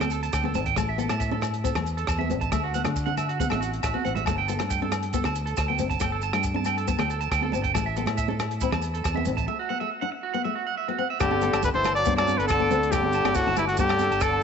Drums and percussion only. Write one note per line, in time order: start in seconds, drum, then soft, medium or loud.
0.01 cross-stick medium
0.01 low agogo medium
0.10 closed hi-hat soft
0.10 maracas medium
0.23 closed hi-hat soft
0.33 kick medium
0.33 cross-stick medium
0.33 closed hi-hat medium
0.33 low agogo medium
0.33 maracas medium
0.44 high conga medium
0.54 closed hi-hat soft
0.54 low conga medium
0.54 maracas medium
0.66 kick medium
0.66 closed hi-hat soft
0.76 kick medium
0.76 cross-stick medium
0.76 closed hi-hat soft
0.76 low agogo medium
0.76 maracas medium
0.99 closed hi-hat soft
0.99 maracas medium
1.09 cross-stick medium
1.09 closed hi-hat soft
1.09 low conga medium
1.09 low agogo medium
1.20 kick medium
1.20 closed hi-hat soft
1.20 maracas medium
1.31 high conga medium
1.41 cross-stick medium
1.41 closed hi-hat soft
1.41 low conga medium
1.41 low agogo medium
1.41 maracas medium
1.54 closed hi-hat soft
1.65 kick medium
1.65 closed hi-hat soft
1.65 maracas medium
1.75 cross-stick medium
1.75 low agogo medium
1.86 closed hi-hat soft
1.86 maracas medium
1.98 closed hi-hat soft
2.07 kick medium
2.07 cross-stick medium
2.07 closed hi-hat soft
2.07 low agogo medium
2.07 maracas medium
2.18 high conga medium
2.30 closed hi-hat soft
2.30 low conga medium
2.30 maracas medium
2.41 kick medium
2.41 closed hi-hat soft
2.52 kick medium
2.52 cross-stick medium
2.52 closed hi-hat soft
2.52 low agogo medium
2.52 maracas medium
2.74 closed hi-hat soft
2.74 maracas medium
2.84 cross-stick medium
2.84 closed hi-hat soft
2.84 low conga medium
2.84 low agogo medium
2.96 kick medium
2.96 closed hi-hat soft
2.96 maracas medium
3.07 high conga medium
3.17 closed hi-hat soft
3.17 low conga medium
3.17 low agogo medium
3.17 maracas medium
3.29 closed hi-hat soft
3.40 kick medium
3.40 closed hi-hat soft
3.40 high conga medium
3.40 maracas medium
3.50 cross-stick medium
3.50 high conga medium
3.50 low agogo medium
3.62 closed hi-hat soft
3.62 maracas medium
3.73 closed hi-hat soft
3.83 kick medium
3.83 cross-stick medium
3.83 closed hi-hat soft
3.83 low agogo medium
3.83 maracas medium
3.95 high conga soft
4.05 closed hi-hat soft
4.05 low conga medium
4.16 closed hi-hat soft
4.16 low conga medium
4.26 kick medium
4.26 cross-stick medium
4.26 closed hi-hat soft
4.26 low agogo medium
4.26 maracas medium
4.49 closed hi-hat medium
4.49 maracas medium
4.59 cross-stick medium
4.59 closed hi-hat soft
4.59 low conga medium
4.59 low agogo medium
4.70 kick medium
4.70 closed hi-hat soft
4.70 maracas medium
4.82 high conga medium
4.92 cross-stick medium
4.92 closed hi-hat soft
4.92 low conga medium
4.92 low agogo medium
4.92 maracas medium
5.03 closed hi-hat soft
5.13 kick medium
5.13 closed hi-hat soft
5.13 maracas medium
5.24 cross-stick medium
5.24 high conga medium
5.24 low agogo medium
5.35 closed hi-hat soft
5.35 maracas medium
5.47 closed hi-hat soft
5.57 kick medium
5.57 cross-stick medium
5.57 closed hi-hat soft
5.57 low agogo medium
5.57 maracas medium
5.79 closed hi-hat soft
5.79 low conga medium
5.79 maracas medium
5.90 kick medium
5.90 closed hi-hat soft
6.00 kick medium
6.00 cross-stick medium
6.00 closed hi-hat soft
6.00 low agogo medium
6.00 maracas medium
6.21 closed hi-hat soft
6.21 maracas medium
6.33 cross-stick medium
6.33 closed hi-hat soft
6.33 low conga soft
6.33 low agogo medium
6.43 kick medium
6.43 closed hi-hat soft
6.43 maracas medium
6.55 high conga medium
6.65 closed hi-hat soft
6.65 low conga medium
6.65 low agogo medium
6.65 maracas medium
6.78 closed hi-hat soft
6.88 kick medium
6.88 closed hi-hat soft
6.88 maracas medium
6.99 cross-stick medium
6.99 high conga medium
6.99 low agogo medium
7.10 closed hi-hat soft
7.10 maracas medium
7.21 closed hi-hat soft
7.31 kick medium
7.31 cross-stick medium
7.31 closed hi-hat medium
7.31 low agogo medium
7.31 maracas medium
7.41 high conga medium
7.52 closed hi-hat soft
7.52 low conga medium
7.52 maracas medium
7.64 kick medium
7.64 closed hi-hat soft
7.75 kick medium
7.75 cross-stick medium
7.75 closed hi-hat soft
7.75 low agogo medium
7.75 maracas medium
7.96 closed hi-hat soft
7.96 maracas medium
8.06 cross-stick medium
8.06 closed hi-hat soft
8.06 low conga medium
8.06 low agogo medium
8.18 kick medium
8.18 closed hi-hat medium
8.18 maracas medium
8.28 high conga medium
8.39 cross-stick medium
8.39 closed hi-hat soft
8.39 low conga medium
8.39 low agogo medium
8.39 maracas medium
8.51 closed hi-hat soft
8.61 kick medium
8.61 closed hi-hat soft
8.61 maracas medium
8.72 cross-stick medium
8.72 high conga medium
8.72 low agogo medium
8.82 closed hi-hat soft
8.82 maracas medium
8.95 closed hi-hat soft
9.04 kick medium
9.04 cross-stick medium
9.04 closed hi-hat soft
9.04 low agogo medium
9.04 maracas medium
9.14 high conga medium
9.25 closed hi-hat soft
9.25 low conga medium
9.25 maracas medium
9.38 kick medium
9.38 closed hi-hat soft
11.20 kick medium
11.20 cross-stick medium
11.20 closed hi-hat medium
11.20 low agogo medium
11.20 maracas medium
11.31 high conga medium
11.41 closed hi-hat medium
11.41 maracas medium
11.53 cross-stick medium
11.53 closed hi-hat medium
11.53 low agogo medium
11.63 kick medium
11.63 closed hi-hat medium
11.63 low conga medium
11.63 maracas medium
11.84 cross-stick medium
11.84 closed hi-hat medium
11.84 low conga medium
11.84 low agogo medium
11.84 maracas medium
11.96 closed hi-hat medium
12.05 kick medium
12.05 closed hi-hat medium
12.05 maracas medium
12.18 cross-stick medium
12.18 low agogo medium
12.28 closed hi-hat soft
12.28 high conga medium
12.28 maracas medium
12.40 closed hi-hat medium
12.48 kick loud
12.48 cross-stick medium
12.48 closed hi-hat medium
12.48 low agogo medium
12.48 maracas medium
12.71 closed hi-hat soft
12.71 high conga medium
12.71 low conga medium
12.71 maracas medium
12.83 closed hi-hat medium
12.92 kick medium
12.92 cross-stick medium
12.92 closed hi-hat soft
12.92 low agogo medium
12.92 maracas medium
13.03 high conga medium
13.13 closed hi-hat soft
13.13 maracas medium
13.25 cross-stick medium
13.25 closed hi-hat soft
13.25 high conga medium
13.25 low agogo medium
13.34 kick medium
13.34 closed hi-hat soft
13.34 low conga medium
13.34 maracas medium
13.56 closed hi-hat soft
13.56 low conga medium
13.56 low agogo medium
13.56 maracas medium
13.69 closed hi-hat soft
13.77 kick medium
13.77 closed hi-hat soft
13.77 maracas loud
13.89 cross-stick medium
13.89 low agogo medium
13.99 closed hi-hat soft
13.99 high conga medium
13.99 maracas medium
14.12 closed hi-hat soft
14.20 kick loud
14.20 cross-stick medium
14.20 closed hi-hat medium
14.20 low agogo medium
14.20 maracas medium